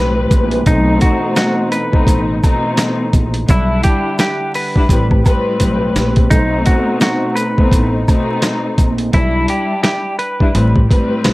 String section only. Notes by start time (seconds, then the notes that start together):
Already playing: A2 G3 C4 B4
0.66 B2 A3 C4 D#4
1.92 B2 A3 C4 D#4
2.43 B2 A3 C4 D#4
3.48 G3 D4 E4
4.75 G3 D4 E4
4.89 A2 G3 C4 B4
5.24 A2 G3 C4 B4
6.30 B2 A3 C4 D#4
7.57 B2 A3 C4 D#4
8.08 B2 A3 C4 D#4
9.12 G3 D4 E4
10.40 G3 D4 E4
10.54 A2 G3 C4 B4
10.88 A2 G3 C4 B4